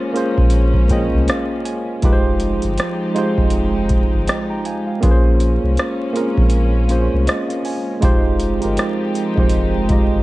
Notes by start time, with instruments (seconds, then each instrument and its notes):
Already playing: string section G#3 A#3 C#4, tine electric piano A#3 C#4 F4 G#4 C5 F5 G#5
0.13 tine electric piano A#3 C#4 F4 G#4 C5, closed hi-hat
0.38 sub bass A#1, kick
0.50 closed hi-hat
0.74 kick
0.89 tine electric piano A#3 C#4 F4 G#4 D#5 G5, kick, closed hi-hat
1.14 sub bass C2
1.28 tine electric piano F5, cross-stick, closed hi-hat
1.65 tine electric piano G#5, closed hi-hat
2.02 sub bass F1, string section F3 G#3 C4 D#4 G4, tine electric piano G#3 D#4 F4 G4 B4, kick, closed hi-hat
2.13 tine electric piano C5
2.40 closed hi-hat
2.62 sub bass G1, closed hi-hat
2.78 cross-stick, closed hi-hat
3.14 tine electric piano G#3 D#4 F4 G4 C5, closed hi-hat
3.38 sub bass F1, kick
3.50 closed hi-hat
3.89 kick, closed hi-hat
4.14 sub bass G1
4.28 tine electric piano D#5 G5, cross-stick, closed hi-hat
4.50 tine electric piano G5 A#5
4.65 tine electric piano F5 G#5, closed hi-hat
4.87 tine electric piano F5
5.01 sub bass A#1, string section G#3 A#3 C#4, tine electric piano A#3 C#4 F4 G#4, kick, closed hi-hat
5.05 tine electric piano B4
5.11 tine electric piano C5
5.40 closed hi-hat
5.64 sub bass C2
5.77 cross-stick, closed hi-hat
6.13 tine electric piano A#3 C4 F4 G#4 A#4, closed hi-hat
6.20 tine electric piano C#4
6.38 sub bass A#1, kick
6.50 closed hi-hat
6.88 tine electric piano A#3 C#4 F4 G#4 C5, closed hi-hat
7.14 sub bass C2
7.27 tine electric piano D#5, cross-stick, closed hi-hat
7.48 tine electric piano F5, closed hi-hat
7.65 tine electric piano G#5, open hi-hat
8.01 sub bass F1, string section F3 G#3 C4 D#4 G4, tine electric piano G#3 D#4 F4 G4 C5, kick, closed hi-hat
8.40 closed hi-hat
8.60 sub bass G1, tine electric piano G#3 D#4 F4 G4, closed hi-hat
8.64 tine electric piano A#4
8.77 cross-stick, closed hi-hat
9.15 closed hi-hat
9.36 sub bass F1, tine electric piano G#3 D#4 F4 G4 C5, kick
9.50 closed hi-hat
9.89 tine electric piano G#3 D#4 F4 G4 D#5, kick, closed hi-hat
10.13 sub bass G1